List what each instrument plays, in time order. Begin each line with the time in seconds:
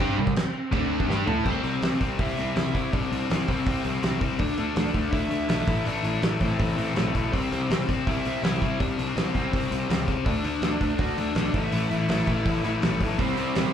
Already playing: lead electric guitar C4 C5
0.00 picked electric bass G2, overdriven electric guitar G3 D4 G4
0.17 picked electric bass C2, overdriven electric guitar C3 G3
0.27 kick
0.36 snare, crash
0.71 picked electric bass D2, overdriven electric guitar D3 A3 D4, kick, crash
1.00 kick
1.08 picked electric bass G2, overdriven electric guitar G3 D4 G4, snare
1.26 picked electric bass A2, overdriven electric guitar A3 E4 A4, floor tom
1.44 picked electric bass C2, overdriven electric guitar C3 G3 C4, lead electric guitar C4 C5, kick, crash
1.63 picked electric bass C2, overdriven electric guitar C3 G3 C4, open hi-hat
1.82 picked electric bass C2, overdriven electric guitar C3 G3 C4, snare, open hi-hat
2.00 picked electric bass C2, overdriven electric guitar C3 G3 C4, kick, open hi-hat
2.19 picked electric bass C2, overdriven electric guitar C3 G3 C4, lead electric guitar E4 E5, kick, open hi-hat
2.37 picked electric bass C2, overdriven electric guitar C3 G3 C4, open hi-hat
2.55 picked electric bass C2, overdriven electric guitar C3 G3 C4, lead electric guitar E4 E5, snare, open hi-hat
2.74 overdriven electric guitar C3 G3 C4, kick, open hi-hat
2.92 picked electric bass C2, overdriven electric guitar C3 G3 C4, lead electric guitar D4 D5, kick, open hi-hat
3.11 picked electric bass C2, overdriven electric guitar C3 G3 C4, open hi-hat
3.29 picked electric bass C2, overdriven electric guitar C3 G3 C4, snare, open hi-hat
3.47 picked electric bass C2, overdriven electric guitar C3 G3 C4, lead electric guitar C4 C5, kick, open hi-hat
3.66 picked electric bass C2, overdriven electric guitar C3 G3 C4, kick, open hi-hat
3.84 picked electric bass C2, overdriven electric guitar C3 G3 C4, open hi-hat
4.02 picked electric bass C2, overdriven electric guitar C3 G3 C4, snare, open hi-hat
4.20 overdriven electric guitar C3 G3 C4, kick, open hi-hat
4.39 picked electric bass D2, overdriven electric guitar D3 A3 D4, lead electric guitar D4 D5, kick, open hi-hat
4.57 picked electric bass D2, overdriven electric guitar D3 A3 D4, open hi-hat
4.76 picked electric bass D2, overdriven electric guitar D3 A3 D4, snare, open hi-hat
4.94 picked electric bass D2, overdriven electric guitar D3 A3 D4, kick, open hi-hat
5.11 picked electric bass D2, overdriven electric guitar D3 A3 D4, lead electric guitar E4 E5, kick, open hi-hat
5.29 picked electric bass D2, overdriven electric guitar D3 A3 D4, open hi-hat
5.48 picked electric bass B1, overdriven electric guitar D3 A3 D4, lead electric guitar E4 E5, snare, open hi-hat
5.67 picked electric bass A1, overdriven electric guitar A2 E3 A3, kick, open hi-hat
5.85 picked electric bass A1, overdriven electric guitar A2 E3 A3, lead electric guitar D4 D5, open hi-hat
6.04 picked electric bass A1, overdriven electric guitar A2 E3 A3, open hi-hat
6.22 picked electric bass A1, overdriven electric guitar A2 E3 A3, snare, open hi-hat
6.40 picked electric bass A1, overdriven electric guitar A2 E3 A3, lead electric guitar C4 C5, kick, open hi-hat
6.59 picked electric bass A1, overdriven electric guitar A2 E3 A3, kick, open hi-hat
6.77 picked electric bass A1, overdriven electric guitar A2 E3 A3, open hi-hat
6.95 picked electric bass B1, overdriven electric guitar A2 E3 A3, snare, open hi-hat
7.15 overdriven electric guitar A2 E3 A3, kick, open hi-hat
7.32 picked electric bass C2, overdriven electric guitar C3 G3 C4, lead electric guitar C4 C5, kick, open hi-hat
7.51 picked electric bass C2, overdriven electric guitar C3 G3 C4, open hi-hat
7.69 picked electric bass C2, overdriven electric guitar C3 G3 C4, snare, open hi-hat
7.87 picked electric bass C2, overdriven electric guitar C3 G3 C4, kick, open hi-hat
8.07 picked electric bass C2, overdriven electric guitar C3 G3 C4, lead electric guitar E4 E5, kick, open hi-hat
8.25 picked electric bass C2, overdriven electric guitar C3 G3 C4, open hi-hat
8.43 picked electric bass C2, overdriven electric guitar C3 G3 C4, lead electric guitar E4 E5, snare, open hi-hat
8.61 overdriven electric guitar C3 G3 C4, kick, open hi-hat
8.79 picked electric bass C2, overdriven electric guitar C3 G3 C4, lead electric guitar D4 D5, kick, open hi-hat
8.98 picked electric bass C2, overdriven electric guitar C3 G3 C4, open hi-hat
9.16 picked electric bass C2, overdriven electric guitar C3 G3 C4, snare, open hi-hat
9.34 picked electric bass C2, overdriven electric guitar C3 G3 C4, lead electric guitar C4 C5, kick, open hi-hat
9.52 picked electric bass C2, overdriven electric guitar C3 G3 C4, kick, open hi-hat
9.71 picked electric bass C2, overdriven electric guitar C3 G3 C4, open hi-hat
9.89 picked electric bass C#2, overdriven electric guitar C3 G3 C4, snare, open hi-hat
10.07 overdriven electric guitar C3 G3 C4, kick, open hi-hat
10.26 picked electric bass D2, overdriven electric guitar D3 A3 D4, lead electric guitar D4 D5, kick, open hi-hat
10.44 picked electric bass D2, overdriven electric guitar D3 A3 D4, open hi-hat
10.62 picked electric bass D2, overdriven electric guitar D3 A3 D4, snare, open hi-hat
10.81 picked electric bass D2, overdriven electric guitar D3 A3 D4, kick, open hi-hat
10.99 picked electric bass D2, overdriven electric guitar D3 A3 D4, lead electric guitar F#4 F#5, kick, open hi-hat
11.17 picked electric bass D2, overdriven electric guitar D3 A3 D4, lead electric guitar D4 D5, open hi-hat
11.35 picked electric bass B1, overdriven electric guitar D3 A3 D4, snare, open hi-hat
11.54 picked electric bass A1, overdriven electric guitar A2 E3 A3, lead electric guitar E4 E5, kick, open hi-hat
11.72 picked electric bass A1, overdriven electric guitar A2 E3 A3, open hi-hat
11.90 picked electric bass A1, overdriven electric guitar A2 E3 A3, open hi-hat
12.09 picked electric bass A1, overdriven electric guitar A2 E3 A3, snare, open hi-hat
12.27 picked electric bass A1, overdriven electric guitar A2 E3 A3, kick, open hi-hat
12.46 picked electric bass A1, overdriven electric guitar A2 E3 A3, kick, open hi-hat
12.64 picked electric bass A1, overdriven electric guitar A2 E3 A3, open hi-hat
12.82 picked electric bass B1, overdriven electric guitar A2 E3 A3, snare, open hi-hat
13.00 overdriven electric guitar A2 E3 A3, kick, open hi-hat
13.18 picked electric bass C2, overdriven electric guitar C3 G3 C4, lead electric guitar C4 C5, kick, open hi-hat
13.37 picked electric bass C2, overdriven electric guitar C3 G3 C4, open hi-hat
13.55 picked electric bass C2, overdriven electric guitar C3 G3 C4, snare, open hi-hat